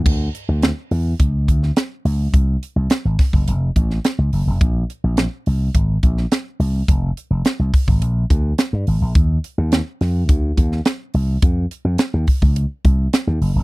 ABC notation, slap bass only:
X:1
M:4/4
L:1/16
Q:1/4=106
K:Fdor
V:1 name="Slap bass" clef=bass
D,,2 z D,,2 z =E,,2 _D,,2 =D,,2 z2 _D,,2 | C,,2 z C,, z A,,, z _G,,, F,,,2 =A,,,2 z _D,, G,,, F,,, | B,,,2 z B,,,2 z C,,2 A,,,2 B,,,2 z2 C,,2 | F,,,2 z F,,, z C,, z A,,, B,,,2 D,,2 z G,, A,,, B,,, |
E,,2 z E,,2 z F,,2 D,,2 E,,2 z2 C,,2 | F,,2 z F,, z E,, z _D,,2 z C,,2 z E,, _G,,, F,,, |]